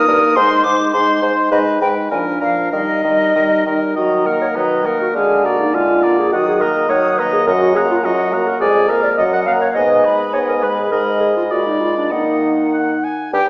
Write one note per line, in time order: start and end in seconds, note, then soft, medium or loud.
0.00 0.37 D#6 medium
0.08 0.21 G2 medium
0.08 0.36 A#3 soft
0.08 0.36 D#4 medium
0.08 0.36 A#4 medium
0.36 0.49 G#2 medium
0.36 0.64 G#3 medium
0.36 0.64 D#4 medium
0.36 0.64 C5 medium
0.36 0.65 C6 medium
0.64 0.78 G#2 medium
0.64 0.93 G#3 soft
0.64 0.93 D#4 medium
0.64 0.93 C5 soft
0.64 0.92 D6 medium
0.92 1.06 G#2 medium
0.92 1.22 G#3 medium
0.92 1.22 D#4 medium
0.92 1.22 C5 medium
0.92 1.21 C6 medium
1.22 1.35 G#2 medium
1.22 1.51 G#3 soft
1.22 1.51 D#4 soft
1.22 1.51 C5 medium
1.51 1.65 G#2 medium
1.51 1.81 G#3 medium
1.51 1.81 D#4 medium
1.51 1.80 B4 medium
1.51 1.58 D#5 medium
1.81 1.95 G#2 soft
1.81 2.10 G#3 soft
1.81 2.11 D#4 soft
1.81 2.10 B4 soft
1.81 1.88 G5 medium
2.11 2.25 A#2 soft
2.11 2.40 F3 medium
2.11 2.41 D4 soft
2.11 2.40 A#4 soft
2.11 2.18 G#5 medium
2.40 2.55 A#2 soft
2.40 2.72 F3 soft
2.40 2.72 D4 soft
2.40 2.71 A#4 soft
2.40 2.72 F5 medium
2.71 2.87 D#3 medium
2.71 3.03 G3 soft
2.71 3.03 D#4 soft
2.71 3.03 A#4 soft
2.71 3.65 D#5 medium
3.04 3.18 D#3 soft
3.04 3.35 G3 soft
3.04 3.35 D#4 soft
3.04 3.34 A#4 soft
3.35 3.49 D#3 soft
3.35 3.66 G3 soft
3.35 3.66 D#4 soft
3.35 3.66 A#4 soft
3.66 3.80 D#3 soft
3.66 3.96 G3 soft
3.66 3.96 D#4 soft
3.66 3.96 A#4 soft
3.96 4.48 D#3 soft
3.96 4.28 F#3 soft
3.96 4.24 F#4 medium
3.96 4.28 D#5 soft
3.96 4.27 A#5 soft
4.25 4.58 A#3 soft
4.25 4.40 A#4 medium
4.25 4.57 A#4 soft
4.25 4.57 F#5 soft
4.41 4.48 C#5 medium
4.55 5.08 D#3 medium
4.55 4.87 F#3 soft
4.55 4.87 B4 medium
4.55 4.87 D#5 soft
4.55 4.87 A#5 soft
4.85 5.15 A#3 soft
4.85 5.00 A#4 medium
4.85 5.15 A#4 soft
4.85 5.14 F#5 soft
5.01 5.08 F#4 medium
5.14 5.67 D3 medium
5.14 5.47 G#3 soft
5.14 5.46 G#4 medium
5.14 5.47 F5 soft
5.14 5.45 G#5 soft
5.44 5.77 A#3 soft
5.44 5.59 F#4 medium
5.44 5.76 D5 soft
5.44 5.75 A#5 soft
5.60 5.75 D#4 medium
5.73 6.25 D3 medium
5.73 6.06 G#3 soft
5.73 6.20 F4 medium
5.73 6.05 F5 soft
5.73 6.04 G#5 soft
6.03 6.33 A#3 soft
6.03 6.32 D5 soft
6.03 6.31 A#5 soft
6.18 6.34 G#4 medium
6.31 6.83 D#3 medium
6.31 6.63 F#3 soft
6.31 6.46 F#4 medium
6.31 6.63 F#5 soft
6.31 6.62 D#6 soft
6.47 6.60 G#4 medium
6.60 6.92 A#3 soft
6.60 6.89 A#4 medium
6.60 6.92 D#5 soft
6.60 6.91 A#5 soft
6.89 7.40 D#3 medium
6.89 7.21 F#3 medium
6.89 7.20 C#5 medium
6.89 7.21 F#5 soft
6.89 7.21 D#6 soft
7.18 7.47 A#3 soft
7.18 7.32 B4 medium
7.18 7.47 D#5 medium
7.18 7.46 A#5 soft
7.33 7.39 G#4 medium
7.46 7.97 F#2 medium
7.46 7.78 F#3 medium
7.46 7.53 A#4 medium
7.46 7.78 D#5 medium
7.46 7.77 F#5 soft
7.61 7.74 F#4 medium
7.75 8.07 A#3 soft
7.75 7.81 G#4 medium
7.75 8.06 F#5 medium
7.75 8.05 A#5 medium
7.90 7.96 F4 medium
8.03 8.54 F#2 medium
8.03 8.34 F#3 medium
8.03 8.48 F#4 medium
8.03 8.35 D#5 soft
8.03 8.33 F#5 medium
8.32 8.60 A#3 soft
8.32 8.61 F#5 medium
8.32 8.59 A#5 soft
8.47 8.59 A#4 medium
8.60 9.11 F2 medium
8.60 8.91 G#3 medium
8.60 8.90 G#4 medium
8.60 8.92 D5 medium
8.60 8.90 G#5 medium
8.88 9.18 A#3 soft
8.88 9.03 A#4 medium
8.88 9.17 F5 medium
8.88 9.17 A#5 soft
9.03 9.10 D5 medium
9.17 9.69 F#2 medium
9.17 9.48 F#3 medium
9.17 9.24 D#5 medium
9.17 9.48 D#5 soft
9.17 9.47 F#5 medium
9.33 9.39 F#5 medium
9.46 9.76 A#3 soft
9.46 9.53 F5 medium
9.46 9.75 F#5 medium
9.46 9.74 A#5 soft
9.61 9.68 C#5 medium
9.74 10.27 G#2 medium
9.74 10.07 B3 medium
9.74 10.16 D#5 medium
9.74 10.07 D#5 medium
9.74 10.06 G#5 soft
10.04 10.36 G#3 soft
10.04 10.36 B4 soft
10.04 10.35 B5 soft
10.33 10.85 G#2 medium
10.33 10.64 B3 soft
10.33 10.40 C#5 medium
10.33 10.65 D#5 soft
10.33 10.64 G#5 soft
10.48 10.55 A#4 medium
10.62 10.91 G#3 soft
10.62 10.69 B4 medium
10.62 10.91 B4 soft
10.62 10.90 B5 soft
10.77 10.90 G#4 medium
10.90 11.53 G#2 medium
10.90 11.34 G#3 soft
10.90 11.22 A#4 medium
10.90 11.53 D#5 soft
10.90 11.28 B5 soft
11.20 11.35 G#4 medium
11.36 11.43 F4 medium
11.50 12.13 A#2 soft
11.50 12.13 G#3 soft
11.50 11.65 F#4 medium
11.50 12.14 D5 soft
11.50 12.12 B5 soft
11.66 11.82 D#4 medium
11.80 11.96 F4 medium
11.97 12.10 D4 soft
12.11 13.04 D#3 soft
12.11 13.04 A#3 soft
12.11 13.02 D#4 medium
12.11 12.57 D#5 soft
12.11 13.03 F#5 soft
12.74 13.06 F#5 soft
13.04 13.33 G#5 soft
13.33 13.40 G2 medium
13.33 13.49 G4 medium
13.33 13.47 G4 medium
13.33 13.47 G5 medium